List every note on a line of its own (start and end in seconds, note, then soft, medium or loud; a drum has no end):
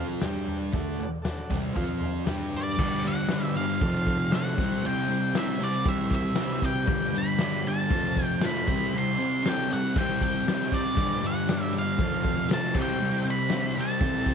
0.00 0.22 F3 medium
0.00 0.22 C4 loud
0.00 0.22 F4 loud
0.21 0.73 G3 loud
0.21 0.73 D4 loud
0.21 0.58 G4 medium
0.21 0.74 G4 loud
0.21 0.58 D5 medium
0.21 0.59 G5 medium
0.21 snare loud
0.21 floor tom medium
0.21 tambourine medium
0.48 floor tom medium
0.72 0.98 D3 medium
0.72 0.98 A3 medium
0.72 0.99 D4 medium
0.72 1.09 A4 medium
0.72 1.10 D5 medium
0.72 kick loud
0.72 floor tom medium
0.78 1.11 F#5 loud
0.99 muted distorted electric guitar stroke medium
0.99 floor tom medium
1.22 1.59 A4 medium
1.22 1.60 D5 medium
1.22 1.60 F#5 medium
1.22 snare loud
1.22 floor tom medium
1.22 tambourine medium
1.50 1.75 C3 medium
1.50 1.75 G3 medium
1.50 1.75 C4 medium
1.50 kick loud
1.50 floor tom medium
1.74 2.26 F3 medium
1.74 2.26 C4 medium
1.74 2.11 F4 medium
1.74 2.27 F4 loud
1.74 2.11 C5 medium
1.74 2.12 F5 medium
1.74 kick loud
1.74 floor tom medium
2.00 2.24 C6 medium
2.00 floor tom medium
2.24 2.78 G3 medium
2.24 2.78 D4 loud
2.24 2.62 G4 medium
2.24 2.78 G4 loud
2.24 2.62 D5 medium
2.24 2.62 G5 medium
2.24 snare loud
2.24 floor tom medium
2.28 tambourine medium
2.53 floor tom medium
2.57 3.08 D5 medium
2.77 3.29 G2 loud
2.77 3.07 D3 medium
2.77 3.15 G4 medium
2.77 3.15 B4 medium
2.77 kick loud
2.77 crash loud
2.77 crash medium
2.82 3.04 G3 loud
2.82 3.16 D5 medium
2.93 tambourine soft
3.05 3.32 D3 medium
3.05 3.33 G3 medium
3.05 3.54 F#5 medium
3.05 tambourine medium
3.28 3.80 G2 medium
3.28 3.66 G4 medium
3.28 3.66 B4 medium
3.28 3.66 D5 medium
3.28 snare loud
3.28 tambourine loud
3.28 crash medium
3.33 3.58 D3 medium
3.33 3.55 G3 loud
3.56 3.82 D3 medium
3.56 3.80 G3 medium
3.56 4.35 F5 loud
3.56 tambourine medium
3.69 tambourine medium
3.81 4.31 F2 medium
3.81 4.33 C3 loud
3.81 4.34 F3 loud
3.81 4.17 F4 medium
3.81 4.17 A4 medium
3.81 4.18 C5 medium
3.81 kick loud
3.81 tambourine soft
3.81 crash medium
4.07 kick medium
4.07 tambourine medium
4.22 tambourine soft
4.29 4.57 F2 medium
4.29 4.57 F4 medium
4.29 4.57 A4 medium
4.29 snare loud
4.29 crash medium
4.33 4.57 C3 medium
4.33 4.58 F3 medium
4.33 4.55 C5 medium
4.33 4.86 F#5 medium
4.33 tambourine medium
4.53 5.17 E4 medium
4.53 5.18 G4 medium
4.53 5.18 C5 medium
4.58 4.82 C3 medium
4.58 4.84 G3 medium
4.58 4.86 C4 medium
4.58 kick loud
4.58 tambourine soft
4.83 5.33 C3 medium
4.83 5.11 G3 medium
4.83 5.08 C4 medium
4.83 5.33 G5 loud
4.83 crash medium
4.98 tambourine soft
5.09 5.35 G3 medium
5.09 5.36 C4 medium
5.09 tambourine medium
5.31 5.84 C3 medium
5.31 5.69 E4 medium
5.31 5.69 G4 medium
5.31 5.69 C5 medium
5.31 snare loud
5.31 crash medium
5.35 5.61 G3 medium
5.35 5.59 C4 medium
5.35 5.62 E5 medium
5.35 tambourine medium
5.60 5.85 G3 medium
5.60 5.87 C4 medium
5.60 5.86 D5 medium
5.60 tambourine medium
5.74 tambourine medium
5.85 6.36 C3 medium
5.85 6.37 G3 loud
5.85 6.21 E4 medium
5.85 6.21 G4 medium
5.85 6.22 C5 medium
5.85 kick loud
5.85 tambourine soft
5.85 crash medium
5.89 6.38 C4 loud
5.89 6.14 E5 medium
6.11 kick loud
6.11 tambourine medium
6.15 6.61 E5 medium
6.26 tambourine soft
6.35 6.87 C3 medium
6.35 6.64 G3 medium
6.35 6.73 E4 medium
6.35 6.72 G4 medium
6.35 6.73 B4 medium
6.35 snare loud
6.35 tambourine loud
6.35 crash medium
6.39 6.61 C4 loud
6.62 6.88 G3 medium
6.62 6.87 C4 medium
6.62 7.17 G5 loud
6.62 kick medium
6.62 tambourine soft
6.84 7.38 G2 medium
6.84 7.22 D4 medium
6.84 7.22 G4 medium
6.84 7.23 B4 medium
6.84 kick loud
6.84 crash medium
6.89 7.16 D3 loud
6.89 7.12 G3 loud
7.02 tambourine soft
7.13 7.39 D3 medium
7.13 7.41 G3 medium
7.13 tambourine medium
7.18 7.68 B5 loud
7.37 7.89 G2 medium
7.37 7.66 D3 medium
7.37 7.74 D4 medium
7.37 7.74 G4 medium
7.37 7.75 D5 medium
7.37 snare loud
7.37 crash medium
7.41 7.63 G3 medium
7.41 tambourine loud
7.64 7.90 D3 medium
7.64 7.89 G3 medium
7.64 8.25 A5 loud
7.64 tambourine medium
7.80 tambourine medium
7.86 8.24 F4 medium
7.86 8.25 A4 medium
7.86 8.25 C5 medium
7.86 crash medium
7.91 8.42 F2 medium
7.91 8.43 C3 medium
7.91 8.44 F3 loud
7.91 kick loud
7.91 tambourine soft
8.16 kick medium
8.16 tambourine medium
8.25 8.45 G5 loud
8.31 tambourine soft
8.41 8.66 F2 medium
8.41 8.67 C3 medium
8.41 8.67 F3 medium
8.41 8.68 F4 medium
8.41 8.67 A4 medium
8.41 8.68 C5 medium
8.41 snare loud
8.41 tambourine medium
8.41 crash medium
8.46 8.96 B5 loud
8.67 8.92 C3 medium
8.67 8.93 G3 medium
8.67 8.95 C4 loud
8.67 9.28 E4 medium
8.67 9.29 G4 medium
8.67 9.29 C5 medium
8.67 kick loud
8.67 tambourine soft
8.93 9.43 C3 medium
8.93 9.20 G3 medium
8.93 9.18 C4 medium
8.93 tambourine soft
8.93 crash medium
8.98 9.48 C6 loud
9.19 9.45 G3 medium
9.19 9.46 C4 medium
9.19 tambourine medium
9.34 tambourine soft
9.44 9.93 C3 medium
9.44 9.72 G3 medium
9.44 9.68 C4 medium
9.44 snare loud
9.44 tambourine medium
9.44 crash medium
9.49 9.82 E4 medium
9.49 9.82 G4 medium
9.49 9.82 A4 medium
9.49 9.70 G5 loud
9.70 9.94 G3 medium
9.70 9.96 C4 medium
9.70 9.95 F#5 loud
9.70 tambourine medium
9.86 tambourine medium
9.94 10.44 C3 medium
9.94 10.46 G3 loud
9.94 10.47 C4 loud
9.94 kick loud
9.94 crash medium
9.98 10.33 E4 medium
9.98 10.33 G4 medium
9.98 10.22 G5 loud
10.03 10.34 C5 medium
10.21 10.74 G5 loud
10.21 kick medium
10.21 tambourine medium
10.45 10.95 C3 medium
10.45 10.72 G3 medium
10.45 10.68 C4 medium
10.45 snare loud
10.45 tambourine medium
10.45 crash medium
10.52 10.84 E4 medium
10.52 10.84 G4 medium
10.52 10.85 C5 medium
10.62 tambourine soft
10.69 10.96 G3 medium
10.69 10.94 C4 medium
10.69 kick medium
10.74 11.25 D5 medium
10.74 tambourine soft
10.95 11.46 G2 medium
10.95 11.23 D3 medium
10.95 11.20 G3 loud
10.95 kick loud
10.95 crash medium
11.02 11.34 D4 medium
11.02 11.35 G4 medium
11.02 11.35 B4 medium
11.13 tambourine soft
11.22 11.49 D3 medium
11.22 11.50 G3 medium
11.22 tambourine medium
11.27 11.72 F#5 medium
11.46 11.97 G2 medium
11.46 11.76 D3 medium
11.46 11.82 D4 medium
11.46 11.83 G4 medium
11.46 11.84 D5 medium
11.46 snare loud
11.46 tambourine medium
11.46 crash medium
11.51 11.72 G3 medium
11.73 11.97 G3 medium
11.73 tambourine medium
11.77 11.99 D3 medium
11.77 12.48 F5 loud
11.84 tambourine medium
11.97 12.47 F2 loud
11.97 12.49 C3 loud
11.97 12.35 F4 medium
11.97 kick loud
11.97 tambourine soft
11.97 crash medium
12.01 12.50 F3 medium
12.01 12.35 A4 medium
12.01 12.36 C5 loud
12.22 kick loud
12.22 tambourine medium
12.36 tambourine soft
12.48 12.73 F2 medium
12.48 12.73 C3 medium
12.48 12.74 F3 medium
12.48 12.74 F4 medium
12.48 12.74 A4 medium
12.48 12.74 C5 medium
12.48 snare loud
12.48 tambourine loud
12.48 crash medium
12.53 12.75 A5 loud
12.73 13.01 G3 medium
12.73 13.01 C4 loud
12.73 13.34 E4 medium
12.73 13.35 G4 medium
12.73 13.36 C5 medium
12.73 kick loud
12.73 tambourine soft
12.73 crash loud
12.78 12.98 C3 medium
12.82 13.26 G5 loud
13.00 13.49 C3 medium
13.00 13.27 G3 medium
13.00 13.24 C4 loud
13.00 crash medium
13.14 tambourine soft
13.25 13.50 G3 medium
13.25 13.51 C4 medium
13.25 tambourine medium
13.30 13.75 B5 loud
13.49 14.00 C3 medium
13.49 13.77 G3 medium
13.49 13.75 C4 loud
13.49 13.85 E4 medium
13.49 13.85 G4 medium
13.49 13.86 C5 medium
13.49 snare medium
13.49 tambourine loud
13.49 crash medium
13.76 14.01 G3 medium
13.76 14.02 C4 medium
13.76 tambourine medium
13.81 14.34 A5 loud
13.91 tambourine medium
13.97 14.34 C3 medium
13.97 14.34 E4 medium
13.97 14.34 G4 medium
13.97 14.34 A4 medium
13.97 kick loud
13.97 crash medium
14.02 14.34 G3 loud
14.02 14.34 C4 loud
14.02 tambourine soft
14.26 kick medium
14.26 tambourine medium